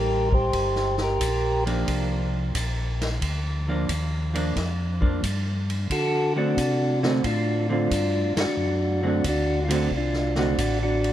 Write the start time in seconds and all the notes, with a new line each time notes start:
Already playing: A1 G4 A#4
0.32 G4 C5, kick
0.53 G1, kick, ride
0.76 snare
0.98 snare
1.02 G4 A#4
1.20 A#1, kick, hi-hat pedal, ride
1.66 F3 A#3 D4, ride
1.87 C2, kick, ride
2.55 A#1, kick, hi-hat pedal, ride
3.01 snare, ride
3.21 D2, kick, ride
3.68 F3 A#3 D4
3.89 D#2, kick, hi-hat pedal, ride
4.34 F3 A#3 D4, ride
4.56 F2, kick, snare, ride
5.01 F3 A#3 D4, kick
5.23 G2, kick, hi-hat pedal, ride
5.70 ride
5.90 D3 F#4 A4, kick, ride
6.35 D3 A3 C4 D4 F#4
6.57 C3, kick, hi-hat pedal, ride
7.03 D3 A3 C4 D4 F#4, snare
7.24 A2 D4 F4, kick, ride
7.69 D3 A3 C4 D4 F4
7.90 G2, kick, hi-hat pedal, ride
8.36 G2, snare, ride
8.40 D4 F#4
8.57 F#2
9.03 D3 A3 C4 F#4
9.08 D4
9.24 D2, kick, hi-hat pedal, ride
9.29 D4 F#4
9.65 D3 A3 F4
9.70 C4 F#4, ride
9.74 D4 F#4
9.91 C2, kick
9.97 D4 F4
10.13 snare
10.35 D3 A3 C4 F#4, snare
10.40 D4
10.58 A1, kick, hi-hat pedal, ride
10.83 D4 F#4
11.04 ride